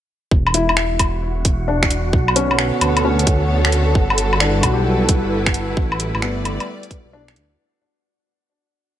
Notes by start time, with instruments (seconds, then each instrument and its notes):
0.31 detuned saw bass E1, synth texture F#4 F#5, kick
0.47 low woodblock
0.54 felt piano E4, closed hi-hat
0.69 low woodblock
0.77 finger snap
0.99 kick, closed hi-hat, low woodblock
1.45 detuned saw bass E1, kick, closed hi-hat
1.68 felt piano D4
1.83 finger snap, kick
1.91 closed hi-hat
2.12 detuned saw bass B1, string section B2, kick
2.26 string section D3 B3, low woodblock
2.36 felt piano C#4, closed hi-hat
2.48 string section C#5, low woodblock
2.55 string section A4, finger snap
2.81 detuned saw bass D2, closed hi-hat, low woodblock
2.97 closed hi-hat, low woodblock
3.05 felt piano C#4
3.19 closed hi-hat
3.27 kick, closed hi-hat
3.65 finger snap
3.72 closed hi-hat
3.95 detuned saw bass G1, string section G3, kick
4.10 low woodblock
4.18 closed hi-hat
4.27 string section B4
4.32 string section E4, low woodblock
4.40 felt piano D4, finger snap
4.61 detuned saw bass B1, felt piano F#4, kick, closed hi-hat, low woodblock
4.73 felt piano G4
5.09 kick, closed hi-hat
5.24 detuned saw bass G1
5.46 finger snap, kick
5.54 closed hi-hat
5.77 detuned saw bass A1, string section A3, kick
5.92 string section G3, low woodblock
6.00 closed hi-hat
6.15 detuned saw bass A1, low woodblock
6.20 detuned saw bass G1, felt piano B3, string section D5, finger snap
6.45 closed hi-hat, low woodblock
6.60 closed hi-hat, low woodblock
6.83 closed hi-hat
6.91 kick, closed hi-hat
7.06 detuned saw bass B1
7.13 felt piano D4
7.28 finger snap
7.36 detuned saw bass D2, closed hi-hat